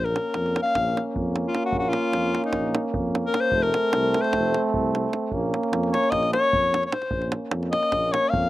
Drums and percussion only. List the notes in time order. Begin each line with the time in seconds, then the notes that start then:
0.06 davul high
0.16 davul high
0.34 davul high
0.46 davul high
0.56 davul high
0.66 davul high
0.75 davul high, davul low
0.97 davul high
1.16 davul low
1.36 davul high
1.55 davul high
1.72 davul low
1.82 davul high
1.93 davul high
2.13 davul high
2.35 davul high
2.44 davul high
2.53 davul high, davul low
2.75 davul high
2.94 davul low
3.15 davul high
3.34 davul high
3.52 davul low
3.63 davul high
3.74 davul high
3.93 davul high
4.14 davul high
4.24 davul high
4.33 davul high, davul low
4.54 davul high
4.74 davul low
4.95 davul high
5.13 davul high
5.32 davul low
5.54 davul high
5.63 davul high
5.73 davul high
5.83 davul high
5.94 davul high
6.03 davul high
6.12 davul high, davul low
6.23 davul high
6.33 davul high
6.44 davul high
6.53 davul low
6.64 davul high
6.74 davul high
6.83 davul high
6.92 davul high
7.02 davul high
7.11 davul low
7.22 davul high
7.32 davul high
7.51 davul high
7.63 davul high
7.73 davul high
7.83 davul high
7.92 davul high, davul low
8.14 davul high
8.33 davul low